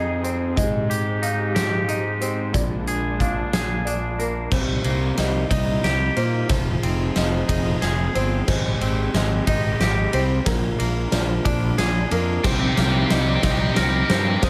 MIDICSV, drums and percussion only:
0, 0, Header, 1, 2, 480
1, 0, Start_track
1, 0, Key_signature, -3, "minor"
1, 0, Tempo, 660066
1, 415, Time_signature, 6, 3, 24, 8
1, 10542, End_track
2, 0, Start_track
2, 0, Title_t, "Drums"
2, 177, Note_on_c, 9, 42, 45
2, 250, Note_off_c, 9, 42, 0
2, 417, Note_on_c, 9, 36, 89
2, 420, Note_on_c, 9, 42, 70
2, 489, Note_off_c, 9, 36, 0
2, 492, Note_off_c, 9, 42, 0
2, 659, Note_on_c, 9, 42, 55
2, 732, Note_off_c, 9, 42, 0
2, 892, Note_on_c, 9, 42, 56
2, 965, Note_off_c, 9, 42, 0
2, 1134, Note_on_c, 9, 38, 91
2, 1134, Note_on_c, 9, 42, 81
2, 1207, Note_off_c, 9, 38, 0
2, 1207, Note_off_c, 9, 42, 0
2, 1371, Note_on_c, 9, 42, 55
2, 1444, Note_off_c, 9, 42, 0
2, 1610, Note_on_c, 9, 42, 48
2, 1683, Note_off_c, 9, 42, 0
2, 1849, Note_on_c, 9, 36, 92
2, 1849, Note_on_c, 9, 42, 71
2, 1921, Note_off_c, 9, 42, 0
2, 1922, Note_off_c, 9, 36, 0
2, 2089, Note_on_c, 9, 42, 51
2, 2162, Note_off_c, 9, 42, 0
2, 2328, Note_on_c, 9, 36, 63
2, 2331, Note_on_c, 9, 42, 47
2, 2401, Note_off_c, 9, 36, 0
2, 2403, Note_off_c, 9, 42, 0
2, 2570, Note_on_c, 9, 38, 99
2, 2570, Note_on_c, 9, 42, 76
2, 2642, Note_off_c, 9, 38, 0
2, 2642, Note_off_c, 9, 42, 0
2, 2812, Note_on_c, 9, 42, 50
2, 2885, Note_off_c, 9, 42, 0
2, 3051, Note_on_c, 9, 42, 40
2, 3123, Note_off_c, 9, 42, 0
2, 3284, Note_on_c, 9, 36, 97
2, 3285, Note_on_c, 9, 38, 45
2, 3285, Note_on_c, 9, 49, 94
2, 3357, Note_off_c, 9, 36, 0
2, 3358, Note_off_c, 9, 38, 0
2, 3358, Note_off_c, 9, 49, 0
2, 3522, Note_on_c, 9, 51, 63
2, 3595, Note_off_c, 9, 51, 0
2, 3763, Note_on_c, 9, 38, 44
2, 3763, Note_on_c, 9, 51, 67
2, 3836, Note_off_c, 9, 38, 0
2, 3836, Note_off_c, 9, 51, 0
2, 4004, Note_on_c, 9, 36, 72
2, 4006, Note_on_c, 9, 51, 93
2, 4077, Note_off_c, 9, 36, 0
2, 4079, Note_off_c, 9, 51, 0
2, 4247, Note_on_c, 9, 38, 50
2, 4247, Note_on_c, 9, 51, 59
2, 4320, Note_off_c, 9, 38, 0
2, 4320, Note_off_c, 9, 51, 0
2, 4484, Note_on_c, 9, 51, 58
2, 4556, Note_off_c, 9, 51, 0
2, 4721, Note_on_c, 9, 38, 54
2, 4721, Note_on_c, 9, 51, 91
2, 4724, Note_on_c, 9, 36, 104
2, 4794, Note_off_c, 9, 38, 0
2, 4794, Note_off_c, 9, 51, 0
2, 4797, Note_off_c, 9, 36, 0
2, 4968, Note_on_c, 9, 51, 65
2, 5041, Note_off_c, 9, 51, 0
2, 5204, Note_on_c, 9, 38, 56
2, 5204, Note_on_c, 9, 51, 66
2, 5277, Note_off_c, 9, 38, 0
2, 5277, Note_off_c, 9, 51, 0
2, 5446, Note_on_c, 9, 36, 72
2, 5447, Note_on_c, 9, 51, 91
2, 5519, Note_off_c, 9, 36, 0
2, 5520, Note_off_c, 9, 51, 0
2, 5687, Note_on_c, 9, 38, 53
2, 5687, Note_on_c, 9, 51, 59
2, 5760, Note_off_c, 9, 38, 0
2, 5760, Note_off_c, 9, 51, 0
2, 5929, Note_on_c, 9, 51, 54
2, 6002, Note_off_c, 9, 51, 0
2, 6165, Note_on_c, 9, 38, 58
2, 6165, Note_on_c, 9, 49, 84
2, 6167, Note_on_c, 9, 36, 97
2, 6238, Note_off_c, 9, 38, 0
2, 6238, Note_off_c, 9, 49, 0
2, 6240, Note_off_c, 9, 36, 0
2, 6409, Note_on_c, 9, 51, 59
2, 6481, Note_off_c, 9, 51, 0
2, 6649, Note_on_c, 9, 38, 61
2, 6649, Note_on_c, 9, 51, 59
2, 6722, Note_off_c, 9, 38, 0
2, 6722, Note_off_c, 9, 51, 0
2, 6887, Note_on_c, 9, 51, 89
2, 6888, Note_on_c, 9, 36, 74
2, 6960, Note_off_c, 9, 51, 0
2, 6961, Note_off_c, 9, 36, 0
2, 7130, Note_on_c, 9, 38, 60
2, 7130, Note_on_c, 9, 51, 57
2, 7203, Note_off_c, 9, 38, 0
2, 7203, Note_off_c, 9, 51, 0
2, 7367, Note_on_c, 9, 51, 57
2, 7439, Note_off_c, 9, 51, 0
2, 7608, Note_on_c, 9, 36, 110
2, 7609, Note_on_c, 9, 38, 76
2, 7609, Note_on_c, 9, 51, 90
2, 7681, Note_off_c, 9, 36, 0
2, 7681, Note_off_c, 9, 38, 0
2, 7681, Note_off_c, 9, 51, 0
2, 7851, Note_on_c, 9, 51, 68
2, 7923, Note_off_c, 9, 51, 0
2, 8087, Note_on_c, 9, 38, 73
2, 8087, Note_on_c, 9, 51, 73
2, 8160, Note_off_c, 9, 38, 0
2, 8160, Note_off_c, 9, 51, 0
2, 8329, Note_on_c, 9, 36, 79
2, 8330, Note_on_c, 9, 51, 92
2, 8402, Note_off_c, 9, 36, 0
2, 8403, Note_off_c, 9, 51, 0
2, 8569, Note_on_c, 9, 38, 70
2, 8569, Note_on_c, 9, 51, 72
2, 8641, Note_off_c, 9, 38, 0
2, 8641, Note_off_c, 9, 51, 0
2, 8808, Note_on_c, 9, 51, 62
2, 8881, Note_off_c, 9, 51, 0
2, 9047, Note_on_c, 9, 38, 82
2, 9047, Note_on_c, 9, 49, 93
2, 9049, Note_on_c, 9, 36, 99
2, 9120, Note_off_c, 9, 38, 0
2, 9120, Note_off_c, 9, 49, 0
2, 9122, Note_off_c, 9, 36, 0
2, 9288, Note_on_c, 9, 38, 72
2, 9288, Note_on_c, 9, 51, 64
2, 9361, Note_off_c, 9, 38, 0
2, 9361, Note_off_c, 9, 51, 0
2, 9529, Note_on_c, 9, 38, 77
2, 9529, Note_on_c, 9, 51, 71
2, 9601, Note_off_c, 9, 38, 0
2, 9601, Note_off_c, 9, 51, 0
2, 9767, Note_on_c, 9, 38, 89
2, 9767, Note_on_c, 9, 51, 96
2, 9770, Note_on_c, 9, 36, 82
2, 9840, Note_off_c, 9, 38, 0
2, 9840, Note_off_c, 9, 51, 0
2, 9843, Note_off_c, 9, 36, 0
2, 10009, Note_on_c, 9, 38, 82
2, 10009, Note_on_c, 9, 51, 67
2, 10081, Note_off_c, 9, 38, 0
2, 10081, Note_off_c, 9, 51, 0
2, 10250, Note_on_c, 9, 38, 81
2, 10250, Note_on_c, 9, 51, 60
2, 10323, Note_off_c, 9, 38, 0
2, 10323, Note_off_c, 9, 51, 0
2, 10491, Note_on_c, 9, 38, 94
2, 10491, Note_on_c, 9, 51, 89
2, 10492, Note_on_c, 9, 36, 104
2, 10542, Note_off_c, 9, 36, 0
2, 10542, Note_off_c, 9, 38, 0
2, 10542, Note_off_c, 9, 51, 0
2, 10542, End_track
0, 0, End_of_file